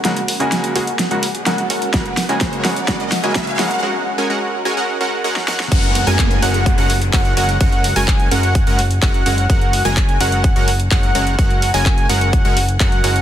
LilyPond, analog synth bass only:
\new Staff \with { instrumentName = "Analog synth bass" } { \clef bass \time 4/4 \key fis \major \tempo 4 = 127 r1 | r1 | r1 | fis,,8. fis,,8. fis,,8. fis,,8. fis,,8 fis,,8 |
fis,,8. fis,,8. fis,,8. fis,,8. fis,,8 fis,,8 | fis,,8. fis,,8. fis,,8. fis,,8. fis,,8 fis,,8 | fis,,8. fis,,8. fis,,8. fis,,8. fis,8 fis,,8 | }